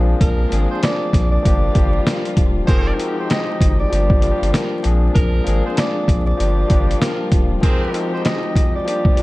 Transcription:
Already playing: A#1 F3 G#3 A#3 C4 D4 G#4
0.20 A#1 A#4, kick, closed hi-hat
0.49 G#1 F3 A#3 C4 D4, closed hi-hat
0.54 G#4
0.71 C5
0.83 D5, snare, closed hi-hat
1.13 A#1, kick, snare, closed hi-hat
1.31 D5
1.42 G1 F3 G3 A#3 D4 F4, kick, closed hi-hat
1.47 G4
1.73 G1 F3 G3 A#3 D4, kick, closed hi-hat
1.78 G4
2.07 A#4, snare, closed hi-hat
2.25 closed hi-hat
2.37 D#1, kick, closed hi-hat
2.66 F1 F3 G#3 C4 D#4 G#4 A#4 C5 G5, kick, closed hi-hat
2.70 G4
2.97 F3 G#3 C4 D#4, closed hi-hat
3.02 F#4
3.08 G4
3.20 C5
3.30 D#5, snare, closed hi-hat
3.61 G1, kick, closed hi-hat
3.79 D5
3.90 G1 F3 G3 A#3 D4 F4, closed hi-hat
3.94 G4
4.10 kick
4.20 F3 G3 A#3 D4, closed hi-hat
4.25 F4
4.31 G4
4.42 G1, closed hi-hat
4.53 A#4, snare, closed hi-hat
4.83 A#1 F3 G#3 A#3 C4 D4, closed hi-hat
4.87 G#4
5.14 A#1 A#4, kick, closed hi-hat
5.44 G#1 F3 A#3 C4 D4, closed hi-hat
5.49 G#4
5.66 C5
5.77 D5, snare, closed hi-hat
6.08 A#1, kick, closed hi-hat
6.27 D5
6.37 G1 F3 G3 A#3 D4 F4, closed hi-hat
6.42 G4
6.68 G1 F3 G3 A#3 D4, kick, closed hi-hat
6.72 G4
6.91 closed hi-hat
7.01 A#4, snare, closed hi-hat
7.32 D#1, kick, closed hi-hat
7.61 F3 G#3 C4 D#4 G#4 A#4 C5 G5, kick, closed hi-hat
7.65 G4
7.92 F3 G#3 C4 D#4, closed hi-hat
7.97 F#4
8.03 G4
8.13 C5
8.25 D#5, snare, closed hi-hat
8.56 kick, closed hi-hat
8.75 D5
8.85 F3 G3 A#3 D4 F4, closed hi-hat
8.89 G4
9.05 kick
9.15 F3 G3 A#3 D4, closed hi-hat

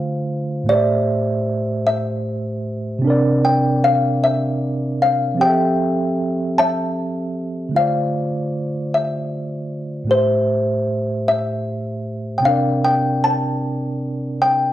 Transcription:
Already playing: D3 A3 F4 C5 F5
0.63 A2 A3
0.69 G4 C5 D5
0.75 E5
1.87 E5
2.99 C3 C4
3.04 D4 A#4
3.10 D5
3.45 G5
3.84 F5
4.24 E5
5.02 F5
5.35 F3 C4
5.40 G4 G#4 G5
5.46 A4 E5
6.58 E5 A5
7.69 D3 A3
7.75 F4 C5 F5
7.80 D5
8.94 E5
10.04 A2 A3
10.10 G4 B4 C5
10.15 C5 E5
11.28 E5
12.38 C3 G5
12.43 C4 D4 F5
12.48 A#4 D5
12.85 G5
13.24 A5
14.42 G5

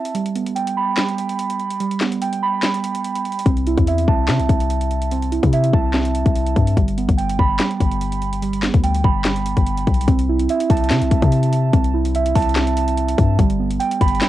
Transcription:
Already playing: C4 E5 A5
0.05 closed hi-hat
0.14 G3, closed hi-hat
0.26 closed hi-hat
0.35 B3, closed hi-hat
0.47 closed hi-hat
0.56 G5, closed hi-hat
0.67 closed hi-hat
0.77 B5
0.97 G3, snare, clap, closed hi-hat
1.09 closed hi-hat
1.18 closed hi-hat
1.29 closed hi-hat
1.39 closed hi-hat
1.50 closed hi-hat
1.60 closed hi-hat
1.71 closed hi-hat
1.80 G3, closed hi-hat
1.91 closed hi-hat
2.01 B3, snare, clap, closed hi-hat
2.12 closed hi-hat
2.22 G5, closed hi-hat
2.33 closed hi-hat
2.43 B5
2.63 G3, snare, clap, closed hi-hat
2.74 closed hi-hat
2.84 closed hi-hat
2.95 closed hi-hat
3.04 closed hi-hat
3.15 closed hi-hat
3.25 closed hi-hat
3.32 closed hi-hat
3.39 closed hi-hat
3.46 C2 C4, kick, closed hi-hat
3.57 closed hi-hat
3.67 E4, closed hi-hat
3.78 E2, kick, closed hi-hat
3.87 E5, closed hi-hat
3.98 closed hi-hat
4.08 C2 A5, kick
4.28 C3 C4, snare, clap, closed hi-hat
4.40 C2, closed hi-hat
4.49 C2, kick, closed hi-hat
4.60 closed hi-hat
4.70 closed hi-hat
4.81 closed hi-hat
4.91 closed hi-hat
5.02 closed hi-hat
5.11 C4, closed hi-hat
5.22 closed hi-hat
5.32 E4, closed hi-hat
5.43 C3, kick, closed hi-hat
5.53 E5, closed hi-hat
5.64 closed hi-hat
5.73 C2 A5, kick
5.94 C4, snare, clap, closed hi-hat
6.05 closed hi-hat
6.15 closed hi-hat
6.26 C2, kick, closed hi-hat
6.36 closed hi-hat
6.47 closed hi-hat
6.56 G2, kick, closed hi-hat
6.67 closed hi-hat
6.77 G1 G3, kick, closed hi-hat
6.88 closed hi-hat
6.98 B3, closed hi-hat
7.09 G1, kick, closed hi-hat
7.18 G5, closed hi-hat
7.29 closed hi-hat
7.39 G1 B5, kick
7.59 G3, snare, clap, closed hi-hat
7.71 closed hi-hat
7.80 G1, kick, closed hi-hat
7.91 closed hi-hat
8.01 closed hi-hat
8.12 closed hi-hat
8.22 closed hi-hat
8.33 closed hi-hat
8.42 G3, closed hi-hat
8.53 closed hi-hat
8.63 B3, snare, clap, closed hi-hat
8.74 D2, kick, closed hi-hat
8.84 G5, closed hi-hat
8.95 closed hi-hat
9.04 G1 B5, kick
9.25 G3, snare, clap, closed hi-hat
9.36 closed hi-hat
9.46 closed hi-hat
9.57 G1, kick, closed hi-hat
9.67 closed hi-hat
9.78 closed hi-hat
9.87 B1, kick, closed hi-hat
9.94 closed hi-hat
10.01 closed hi-hat
10.08 C2 C4, kick, closed hi-hat
10.19 closed hi-hat
10.29 E4
10.40 closed hi-hat
10.49 E5, closed hi-hat
10.60 closed hi-hat
10.70 C2 A5, kick, closed hi-hat
10.77 closed hi-hat
10.84 closed hi-hat
10.90 C3 C4, snare, clap, closed hi-hat
11.02 C2, closed hi-hat
11.11 C2, kick, closed hi-hat
11.22 C3, kick, closed hi-hat
11.32 closed hi-hat
11.43 closed hi-hat
11.53 closed hi-hat
11.73 C2 C4, kick, closed hi-hat
11.84 closed hi-hat
11.94 E4
12.05 closed hi-hat
12.15 E5, closed hi-hat
12.26 closed hi-hat
12.35 C2 A5, kick, closed hi-hat, open hi-hat
12.42 closed hi-hat
12.49 closed hi-hat
12.56 C4, snare, clap, closed hi-hat
12.67 closed hi-hat
12.77 closed hi-hat
12.88 closed hi-hat
12.97 closed hi-hat
13.08 closed hi-hat
13.18 G2, kick, closed hi-hat
13.39 G1 G3, kick, closed hi-hat
13.50 closed hi-hat
13.60 B3
13.71 closed hi-hat
13.80 G5, closed hi-hat
13.91 closed hi-hat
14.01 G1 B5, kick, closed hi-hat
14.08 closed hi-hat
14.15 closed hi-hat
14.21 G3, snare, clap, closed hi-hat

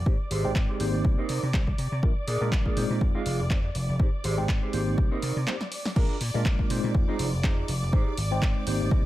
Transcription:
Already playing: D5 D6
0.06 G#2 G#3 C4 D#4 G4 C5, kick
0.31 G#1 G4 G#4 C5, open hi-hat
0.44 G#1 G#3 C4 D#4 C5 G5
0.55 G#2, kick, clap
0.69 G4 G#4 C5
0.80 G#1 A#3 C4 D#4 G4 C5, open hi-hat
0.94 G#1
1.05 C2, kick
1.18 A#3 C4 D#4 G4 A#4 C5 D#5
1.29 C3, open hi-hat
1.43 C3
1.53 C2 A#3 C4 D#4 G4 C5, kick, clap
1.67 muted clean electric guitar stroke, kick
1.78 C3, muted clean electric guitar stroke, open hi-hat
1.92 C3
2.03 A#1 G#3 A#3 D4 F4 A#4, kick
2.27 A#2 G#4 A#4 D5, open hi-hat
2.41 A#2 G#3 A#3 D4 F4 A#4
2.52 A#1, kick, clap
2.66 G#4 A#4 D5, kick
2.76 A#2 G#3 C4 D#4 F4 C5, open hi-hat
2.90 A#2
3.01 F2, kick
3.14 G#3 C4 D#4 F4 G#4 D#5 F5
3.26 F1, open hi-hat
3.39 F1
3.50 F2 G#3 C4 D#4 F4 C5, kick, clap
3.64 muted clean electric guitar stroke
3.75 F1, muted clean electric guitar stroke, open hi-hat
3.89 F1
3.99 G#2 G#3 C4 D#4 G4 C5, kick
4.24 G#1 G4 G#4 C5, open hi-hat
4.37 G#1 G#3 C4 D#4 C5 G5
4.49 G#2, kick, clap
4.62 G4 G#4 C5
4.73 G#1 A#3 C4 D#4 G4 C5, open hi-hat
4.87 G#1
4.98 C2, kick
5.11 A#3 C4 D#4 G4 A#4 C5 D#5
5.22 C3, open hi-hat
5.36 C3
5.47 A#3 C4 D#4 G4 C5, snare, clap
5.60 muted clean electric guitar stroke, snare
5.71 muted clean electric guitar stroke, open hi-hat
5.85 snare
5.96 A#1 G#3 A#3 D4 F4 G#4 A#4 D5 D6, kick, crash
6.21 A#2, open hi-hat
6.34 A#2 G#3 A#3 D4 F4 A#4, muted clean electric guitar stroke
6.45 A#1, kick, clap
6.59 muted clean electric guitar stroke, kick
6.70 A#2 G#3 C4 D#4 F4 C5, muted clean electric guitar stroke, open hi-hat
6.84 A#2
6.94 F2, kick
7.08 G#3 C4 D#4 F4 G#4 C5 D#5
7.19 F1, open hi-hat
7.33 F1
7.43 F2 G#3 C4 D#4 F4 G#4 C5 D#5, kick, clap
7.68 F1, open hi-hat
7.82 F1
7.92 G#2 G#3 C4 D#4 G4 G#4 C5, kick
8.18 G#1, open hi-hat
8.31 G#1 G#3 C4 D#4 C5 G5, muted clean electric guitar stroke
8.42 G#2, kick, clap
8.56 muted clean electric guitar stroke
8.66 G#1 A#3 C4 D#4 G4 C5, muted clean electric guitar stroke, open hi-hat
8.80 G#1 D5
8.91 C2 D#5, kick

